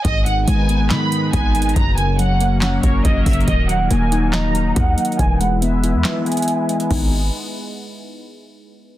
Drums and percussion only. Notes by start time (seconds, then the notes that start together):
0.05 kick, closed hi-hat
0.26 closed hi-hat
0.48 closed hi-hat
0.69 closed hi-hat
0.90 snare, clap, closed hi-hat
1.12 closed hi-hat
1.33 kick, closed hi-hat
1.55 closed hi-hat
1.62 closed hi-hat
1.69 closed hi-hat
1.76 kick, closed hi-hat
1.98 closed hi-hat
2.19 closed hi-hat
2.41 closed hi-hat
2.62 snare, clap, closed hi-hat
2.83 kick, closed hi-hat
3.05 kick, closed hi-hat
3.26 kick, closed hi-hat, open hi-hat
3.33 closed hi-hat
3.41 closed hi-hat
3.48 kick, closed hi-hat
3.69 closed hi-hat
3.91 closed hi-hat
4.12 closed hi-hat
4.33 snare, clap, closed hi-hat
4.55 closed hi-hat
4.76 kick, closed hi-hat
4.98 closed hi-hat
5.05 closed hi-hat
5.12 closed hi-hat
5.19 kick, closed hi-hat
5.41 closed hi-hat
5.62 closed hi-hat
5.84 closed hi-hat
6.05 snare, clap, closed hi-hat
6.26 closed hi-hat
6.32 closed hi-hat
6.37 closed hi-hat
6.42 closed hi-hat
6.48 closed hi-hat
6.69 closed hi-hat
6.80 closed hi-hat
6.91 kick, crash